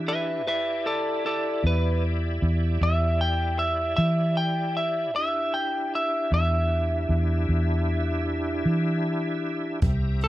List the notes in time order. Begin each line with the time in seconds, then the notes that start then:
Already playing: E3 D4 E4 G4 E5
0.08 B4 E5
0.46 E2 E4 G4 B4 D5 E5
0.86 A4 D5
1.26 A4 D5
1.64 E2 B4
2.42 E2
2.81 E2 E5
3.21 G5
3.59 E5
3.96 E3 E5
4.37 G5
4.77 E5
5.15 E2 D4 E4 G4 E5
5.54 G5
5.95 E5
6.32 E2 E5
7.09 E2
7.49 E2
8.66 E3
9.82 C2 C4 G4 E5 A#5, kick, closed hi-hat
10.21 B4, closed hi-hat